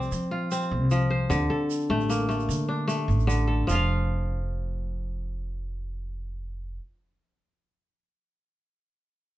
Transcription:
Already playing: kora F3 A3 C4 C5 D5
0.02 shaker
0.12 upright bass F3, shaker
0.31 kora F4
0.51 kora C4, shaker
0.62 shaker
0.71 upright bass C2
0.91 kora F3, shaker
1.10 kora C5
1.30 upright bass D2, kora D3, shaker
1.50 kora A4
1.70 shaker
1.81 shaker
1.90 upright bass A1, kora A3
2.00 shaker
2.10 kora A#3, shaker
2.29 kora A3, shaker
2.40 shaker
2.49 upright bass D3, shaker
2.68 kora D4
2.88 kora A3, shaker
3.08 upright bass A1, shaker
3.20 shaker
3.27 kora D3, shaker
3.48 kora A4
3.67 upright bass F1, kora F3 F4, shaker
3.75 kora F5

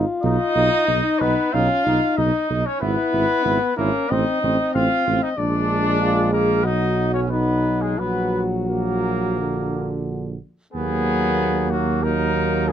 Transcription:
Already playing: french horn F4
0.22 tuba B1, trombone D#4, trumpet D#4 D#5
0.55 tuba B1, trombone D#4
0.87 tuba B1, french horn D#4, trombone D#4
1.19 tuba B1, trumpet B3 B4, trombone D#4
1.53 tuba B1, french horn C#4, trombone D#4, trumpet F4 F5
1.85 tuba B1, french horn D#4, trombone D#4
2.17 tuba B1, trumpet D#4 D#5, trombone D#4
2.49 tuba B1, trombone D#4
2.66 trumpet C#4 C#5
2.80 tuba G#1, trumpet B3 B4, trombone E4, french horn E4
3.12 tuba G#1, trombone E4
3.44 tuba G#1, french horn B3, trombone E4
3.76 tuba G#1, trumpet A#3 A#4, french horn C#4, trombone E4
4.09 tuba A1, trombone C4, french horn C4, trumpet D#4 D#5
4.42 tuba A1, trombone C4, french horn C4
4.74 tuba A1, trombone C4, trumpet F4 F5
5.06 tuba A1, trombone C4
5.22 trumpet D#4 D#5
5.37 tuba A#1, trombone G#3, french horn D4, trumpet D4 D5
6.01 french horn F4
6.33 trumpet A#3 A#4, french horn G#4
6.64 tuba B1, trombone F#3, trumpet D#4 D#5, french horn F#4
7.13 trumpet C#4 C#5
7.29 trombone F#3, trumpet B3 B4, french horn D#4
7.81 trumpet G#3 G#4
7.98 tuba A#1, trombone F#3, trumpet B3 B4, french horn F#4
8.68 trombone F#3, trumpet A#3 A#4
9.39 trombone D3
10.73 tuba D#2, trombone F#3, french horn A#3, trumpet B3 G#4
11.70 trumpet A#3 F#4
12.03 trombone F#3, french horn A#3, trumpet D#4 A#4
12.68 trumpet G#4

